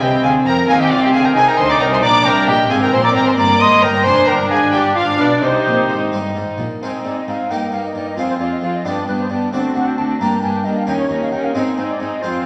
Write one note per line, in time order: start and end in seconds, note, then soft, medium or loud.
0.00 0.23 C2 medium
0.00 0.23 C3 medium
0.00 0.21 C3 medium
0.00 0.67 C4 medium
0.00 0.24 G4 medium
0.00 0.23 D#5 medium
0.00 0.24 G5 loud
0.22 0.45 D2 medium
0.22 0.43 D3 medium
0.22 0.46 D3 medium
0.22 0.33 G#4 medium
0.22 0.30 F5 medium
0.22 0.31 G#5 medium
0.45 0.68 F2 medium
0.45 0.68 F3 medium
0.45 0.67 F3 medium
0.45 0.69 A#4 medium
0.45 0.53 G5 medium
0.45 0.68 A#5 loud
0.68 0.90 D#2 medium
0.68 0.91 D#3 medium
0.68 0.89 D#3 medium
0.68 1.35 C4 medium
0.68 1.17 C4 medium
0.68 1.18 D#4 medium
0.68 1.18 G4 medium
0.68 0.81 G#4 loud
0.68 0.82 F5 loud
0.68 0.80 G#5 loud
0.80 0.91 G4 medium
0.80 0.90 D#5 medium
0.80 0.91 G5 loud
0.90 1.13 C2 medium
0.90 1.14 C3 medium
0.90 1.12 C3 medium
0.90 1.03 F4 loud
0.90 1.01 D5 loud
0.90 1.02 F5 loud
1.02 1.14 G4 medium
1.02 1.07 D#5 medium
1.02 1.14 G5 loud
1.12 1.35 D2 medium
1.12 1.36 D3 medium
1.12 1.34 D3 medium
1.12 1.19 G#4 medium
1.12 1.24 F5 medium
1.12 1.24 G#5 loud
1.24 1.36 A#4 medium
1.24 1.29 G5 medium
1.24 1.36 A#5 loud
1.35 1.43 C2 medium
1.35 1.44 C3 medium
1.35 1.57 C3 medium
1.35 2.00 C4 medium
1.35 2.03 D#4 medium
1.35 2.00 D#4 medium
1.35 1.48 G#4 loud
1.35 2.00 G#4 medium
1.35 1.40 D#5 loud
1.35 1.47 G#5 loud
1.47 1.59 A#4 medium
1.47 1.57 G5 medium
1.47 1.59 A#5 loud
1.57 1.80 D2 medium
1.57 1.80 D3 medium
1.57 1.79 D3 medium
1.57 1.70 C5 loud
1.57 1.68 G#5 loud
1.57 1.69 C6 loud
1.69 1.81 D5 medium
1.69 1.79 A#5 medium
1.69 1.81 D6 loud
1.80 2.02 C2 medium
1.80 2.03 C3 medium
1.80 2.01 C3 medium
1.80 1.92 A#4 loud
1.80 1.85 G5 loud
1.80 1.84 A#5 loud
1.92 2.03 C5 medium
1.92 2.04 G#5 medium
1.92 1.97 C6 medium
2.02 2.25 A#1 medium
2.02 2.26 A#2 medium
2.02 2.23 A#2 medium
2.02 2.66 D4 medium
2.02 2.70 D4 medium
2.02 2.67 G4 medium
2.02 2.25 D5 loud
2.02 2.27 A#5 loud
2.02 2.25 D6 loud
2.25 2.48 C2 medium
2.25 2.48 C3 medium
2.25 2.46 C3 medium
2.25 2.47 A#4 medium
2.25 2.49 G5 loud
2.25 2.48 A#5 loud
2.47 2.70 A#1 medium
2.47 2.70 A#2 medium
2.47 2.69 A#2 medium
2.47 2.70 G4 loud
2.47 2.72 D#5 medium
2.47 2.70 G5 loud
2.70 2.93 G#1 medium
2.70 2.91 G#2 medium
2.70 2.92 G#2 medium
2.70 2.92 G#3 medium
2.70 3.36 C4 medium
2.70 2.91 C4 medium
2.70 3.34 F4 medium
2.70 2.75 G#4 medium
2.70 3.34 G#4 medium
2.70 2.81 F5 loud
2.70 2.75 G#5 loud
2.81 2.92 A#4 medium
2.81 2.92 G5 loud
2.81 2.94 A#5 medium
2.91 3.15 A#1 medium
2.91 3.15 A#2 medium
2.91 3.13 A#2 medium
2.91 3.03 C5 medium
2.91 2.98 G#5 loud
2.91 3.05 C6 loud
3.03 3.15 D5 medium
3.03 3.09 A#5 medium
3.03 3.16 D6 loud
3.14 3.23 G#1 medium
3.14 3.23 G#2 medium
3.14 3.36 G#2 medium
3.14 3.26 A#4 medium
3.14 3.21 G5 loud
3.14 3.26 A#5 loud
3.26 3.38 C5 medium
3.26 3.32 G#5 medium
3.26 3.38 C6 medium
3.36 3.60 G1 medium
3.36 3.58 G2 medium
3.36 3.60 G2 medium
3.36 4.05 A#3 medium
3.36 3.58 A#3 medium
3.36 4.02 D#4 medium
3.36 4.02 A#4 soft
3.36 3.59 D5 loud
3.36 3.60 A#5 loud
3.36 3.59 D6 loud
3.59 3.82 G#1 medium
3.59 3.82 G#2 medium
3.59 3.81 G#2 medium
3.59 3.82 D#5 loud
3.59 3.85 C6 loud
3.59 3.83 D#6 loud
3.82 4.05 G1 medium
3.82 4.05 G2 medium
3.82 4.04 G2 medium
3.82 4.05 A#4 medium
3.82 4.07 G5 loud
3.82 4.05 A#5 loud
4.04 4.13 F1 medium
4.04 4.13 F2 medium
4.04 4.26 F2 medium
4.04 5.40 D4 medium
4.04 4.70 D4 medium
4.04 4.71 G#4 soft
4.04 4.27 C5 loud
4.04 4.30 G#5 loud
4.04 4.28 C6 loud
4.27 4.50 G1 medium
4.27 4.50 G2 medium
4.27 4.49 G2 medium
4.27 4.51 A#4 medium
4.27 4.52 G5 medium
4.27 4.50 A#5 medium
4.50 4.73 G#1 medium
4.50 4.73 G#2 medium
4.50 4.72 G#2 medium
4.50 4.58 G#4 medium
4.50 4.73 F5 medium
4.50 4.73 G#5 loud
4.72 4.96 G1 medium
4.72 4.97 G2 medium
4.72 4.94 G2 medium
4.72 4.94 B3 soft
4.72 4.95 D4 soft
4.72 5.39 F4 medium
4.72 4.96 G4 medium
4.72 4.96 D5 loud
4.72 4.80 G5 medium
4.95 5.19 G#1 medium
4.95 5.19 G#2 medium
4.95 5.18 G#2 medium
4.95 5.03 F4 medium
4.95 5.19 D5 medium
4.95 5.19 F5 loud
5.19 5.42 B1 medium
5.19 5.42 B2 medium
5.19 5.41 B2 medium
5.19 5.42 D4 medium
5.19 5.45 B4 medium
5.19 5.43 D5 medium
5.42 5.50 C2 medium
5.42 5.51 C3 medium
5.42 5.64 C3 medium
5.42 6.12 C4 medium
5.42 6.58 D#4 medium
5.42 6.12 G4 medium
5.42 6.12 C5 medium
5.66 5.88 A#1 medium
5.66 5.88 A#2 medium
5.66 5.87 A#2 medium
5.88 6.11 G#1 medium
5.88 6.12 G#2 medium
5.88 6.10 G#2 medium
6.11 6.35 G1 medium
6.11 6.35 G2 medium
6.11 6.33 G2 medium
6.11 6.63 C4 medium
6.11 6.63 D#4 medium
6.34 6.42 G#1 medium
6.34 6.43 G#2 medium
6.34 6.56 G#2 medium
6.57 6.65 A#1 medium
6.57 6.66 A#2 medium
6.57 6.79 A#2 soft
6.81 6.89 G#2 soft
6.81 7.03 G#2 soft
6.81 7.47 G#3 soft
6.81 7.02 C4 soft
6.81 7.47 C4 soft
6.81 7.02 D#4 soft
6.81 7.47 D#4 soft
6.81 7.04 G#4 soft
6.81 6.88 C5 medium
7.03 7.12 G#2 soft
7.03 7.25 G#2 soft
7.03 7.25 C4 soft
7.03 7.24 D#4 soft
7.03 7.27 G#4 soft
7.03 7.18 D5 medium
7.17 7.28 D#5 soft
7.26 7.35 G#2 soft
7.26 7.48 G#2 soft
7.26 7.49 C4 soft
7.26 7.47 D#4 soft
7.26 7.50 G#4 soft
7.26 7.52 F5 medium
7.48 7.57 G2 soft
7.48 7.71 G2 soft
7.48 7.71 A#3 soft
7.48 8.14 A#3 soft
7.48 7.70 D#4 soft
7.48 8.14 D#4 soft
7.48 8.15 G4 soft
7.48 7.71 A#4 soft
7.48 7.75 G5 medium
7.71 7.80 G2 soft
7.71 7.93 G2 soft
7.71 7.94 A#3 soft
7.71 7.93 D#4 soft
7.71 7.93 A#4 soft
7.71 7.84 F5 medium
7.86 7.95 D#5 soft
7.94 8.02 G2 soft
7.94 8.15 G2 soft
7.94 8.17 A#3 soft
7.94 8.16 D#4 soft
7.94 8.17 A#4 soft
7.94 8.09 D5 medium
8.07 8.17 D#5 medium
8.16 8.24 F2 soft
8.16 8.38 F2 soft
8.16 8.81 C4 soft
8.16 8.38 C4 soft
8.16 8.38 F4 soft
8.16 8.82 F4 soft
8.16 8.39 G#4 soft
8.16 8.82 G#4 soft
8.16 8.29 F5 medium
8.30 8.35 C5 soft
8.39 8.47 F2 soft
8.39 8.60 F2 soft
8.39 8.62 C4 soft
8.39 8.60 F4 soft
8.39 8.61 G#4 soft
8.39 8.45 D5 medium
8.52 8.57 D#5 soft
8.61 8.69 F2 soft
8.61 8.82 F2 soft
8.61 8.85 C4 soft
8.61 8.84 F4 soft
8.61 8.85 G#4 soft
8.61 8.74 F5 medium
8.75 8.86 D#5 medium
8.85 8.93 G2 soft
8.85 9.06 G2 soft
8.85 9.06 B3 soft
8.85 9.49 B3 soft
8.85 9.06 D4 soft
8.85 9.49 D4 soft
8.85 9.06 G4 soft
8.85 9.50 G4 soft
8.85 9.07 D5 medium
9.07 9.16 G2 soft
9.07 9.28 G2 soft
9.07 9.29 B3 soft
9.07 9.29 D4 soft
9.07 9.29 G4 soft
9.07 9.13 B4 medium
9.19 9.32 C5 soft
9.30 9.51 G2 soft
9.30 9.38 G2 soft
9.30 9.52 B3 soft
9.30 9.52 D4 soft
9.30 9.53 G4 soft
9.30 9.52 D5 medium
9.52 9.73 D2 soft
9.52 9.61 D2 soft
9.52 9.74 C4 soft
9.52 10.17 C4 soft
9.52 9.74 D4 soft
9.52 10.17 D4 soft
9.52 9.76 F#4 soft
9.52 10.17 F#4 soft
9.52 9.59 D5 medium
9.75 9.96 D2 soft
9.75 9.84 D2 soft
9.75 9.96 C4 soft
9.75 9.97 D4 soft
9.75 9.97 F#4 soft
9.75 9.89 F#5 medium
9.87 9.97 G5 medium
9.97 10.19 D2 soft
9.97 10.06 D2 soft
9.97 10.20 C4 soft
9.97 10.19 D4 soft
9.97 10.21 F#4 soft
9.97 10.03 A5 medium
10.20 10.28 G2 medium
10.20 10.41 G2 soft
10.20 10.41 A#3 soft
10.20 10.84 A#3 soft
10.20 10.41 D4 soft
10.20 10.85 D4 soft
10.20 10.41 G4 soft
10.20 10.85 G4 soft
10.20 10.42 A#5 medium
10.42 10.63 G2 soft
10.42 10.51 G2 soft
10.42 10.64 A#3 soft
10.42 10.65 D4 soft
10.42 10.65 G4 soft
10.42 10.54 G#5 medium
10.55 10.66 G5 medium
10.64 10.73 G2 soft
10.64 10.86 G2 soft
10.64 10.88 A#3 soft
10.64 10.88 D4 soft
10.64 10.88 G4 soft
10.64 10.79 D#5 medium
10.77 10.87 F5 medium
10.87 11.08 D#2 soft
10.87 10.95 D#2 soft
10.87 11.51 C#4 soft
10.87 11.08 C#4 medium
10.87 11.09 D#4 soft
10.87 11.51 D#4 soft
10.87 11.10 A#4 soft
10.87 11.52 A#4 soft
10.87 10.92 G5 medium
10.99 11.09 C#5 medium
11.09 11.17 D#2 medium
11.09 11.30 D#2 soft
11.09 11.31 C#4 soft
11.09 11.31 D#4 soft
11.09 11.31 A#4 soft
11.09 11.21 D#5 medium
11.22 11.34 F5 medium
11.32 11.40 D#2 soft
11.32 11.53 D#2 soft
11.32 11.55 C#4 soft
11.32 11.54 D#4 soft
11.32 11.55 A#4 soft
11.32 11.46 G5 medium
11.44 11.55 F5 medium
11.54 11.63 G#2 medium
11.54 11.75 G#2 soft
11.54 12.21 G#3 soft
11.54 11.76 C4 medium
11.54 12.19 C4 soft
11.54 11.77 D#4 soft
11.54 12.19 D#4 soft
11.54 11.75 G#4 soft
11.54 12.19 G#4 soft
11.54 11.61 D#5 medium
11.77 11.85 G#2 soft
11.77 11.98 G#2 soft
11.77 11.99 C4 soft
11.77 11.99 D#4 soft
11.77 11.99 G#4 soft
11.77 11.83 C5 medium
11.90 12.02 D5 medium
12.00 12.08 G#2 soft
12.00 12.21 G#2 soft
12.00 12.21 C4 soft
12.00 12.22 D#4 soft
12.00 12.21 G#4 soft
12.00 12.24 D#5 medium
12.22 12.44 F2 medium
12.22 12.43 F2 soft
12.22 12.46 C4 medium
12.22 12.43 C4 soft
12.22 12.46 F4 soft
12.22 12.46 G#4 medium
12.22 12.46 G#4 soft
12.22 12.44 C5 medium